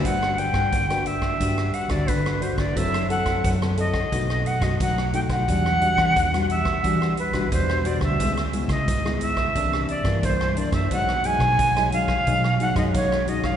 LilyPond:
<<
  \new Staff \with { instrumentName = "Flute" } { \time 4/4 \key g \major \tempo 4 = 88 fis''8 g''4 e''4 fis''16 d''16 b'8 c''16 d''16 | e''8 fis''8 r8 ees''4 fis''16 dis''16 fis''8 g''16 fis''16~ | fis''4. e''4 b'8 c''8 d''16 e''16~ | e''16 r8 ees''8. e''4 d''8 c''8 d''16 e''16 |
fis''8 gis''4 f''4 fis''16 dis''16 cis''8 dis''16 f''16 | }
  \new Staff \with { instrumentName = "Nylon-string guitar" } { \time 4/4 \key g \major << { <d' fis' b'>8 <d' b'>8. <d' fis' b'>8. <d' fis' b'>8. <d' fis' b'>8. <d' fis' b'>16 r16 | <c' e' a'>16 r16 <c' e' a'>8. <c' e' a'>16 <c' e' a'>16 r16 <a dis' fis'>8. <a dis' fis'>8. <a dis' fis'>8 | <g d' fis'>16 r16 <g d' fis'>8. <g d' fis'>8. <g d' fis'>8 r16 <g d' fis'>16 <g d' fis'>8 <g d' fis'>16 r16 | <gis b e'>16 r16 <gis b e'>8 r16 <gis b e'>8. <e bes d'>8. <e bes d'>8. <e bes d'>16 r16 |
<fis gis dis'>16 r16 <fis gis dis'>8. <fis gis dis'>16 <fis gis dis'>16 r16 <fis gis dis'>16 r16 <fis gis dis'>16 <fis gis dis'>8. <fis gis dis'>8 | } \\ { g4 d4 g4 d4 | fis4 fis4 b,4 fis4 | e4 b,4 e4 b,4 | cis4 gis,4 c4 g,4 |
b,4 fis,4 b,4 fis,4 | } >> }
  \new Staff \with { instrumentName = "Fingered electric bass" } { \clef bass \time 4/4 \key g \major g,,8. g,16 g,,4 g,8 r16 d,16 g,,8. g,,16 | fis,,8. fis,16 fis,4 b,,8 r16 fis,16 b,,8. b,,16 | e,8. e16 e,4 e8 r16 b,,16 e,8. d,16 | cis,8. cis16 cis,4 c,8 r16 g,16 c,8. fis,16 |
b,,8. b,16 b,,4 b,8 r16 fis,16 b,,8. bes,,16 | }
  \new DrumStaff \with { instrumentName = "Drums" } \drummode { \time 4/4 <hh bd>16 ss16 hh16 <bd ss>16 <hh bd>16 <hh ss>16 hh16 <bd ss>16 <hh bd>16 ss16 hh16 <hh bd ss>16 <hh bd>16 ss16 hh16 <bd ss>16 | <hh bd>16 <hh ss>16 hh16 <hh bd ss>16 <hh bd>16 ss16 hh16 <bd ss>16 <hh bd>16 ss16 hh16 <hh bd ss>16 <hh bd>16 ss16 hh16 <hh bd ss>16 | <hh bd>16 ss16 hh16 <bd ss>16 <hh bd>16 <hh ss>16 hh16 <bd ss>16 <hh bd>16 ss16 hh16 <hh bd ss>16 <hh bd>16 ss16 hh16 <bd ss>16 | <hh bd>16 <hh ss>16 hh16 <hh bd ss>16 <hh bd>16 ss16 hh16 <bd ss>16 <hh bd>16 ss16 hh16 <hh bd ss>16 <hh bd>16 ss16 hh16 <hh bd ss>16 |
<hh bd>16 ss16 hh16 <bd ss>16 <hh bd>16 <hh ss>16 hh16 <bd ss>16 <hh bd>16 ss16 hh16 <hh bd ss>16 <hh bd>16 ss16 hh16 <bd ss>16 | }
>>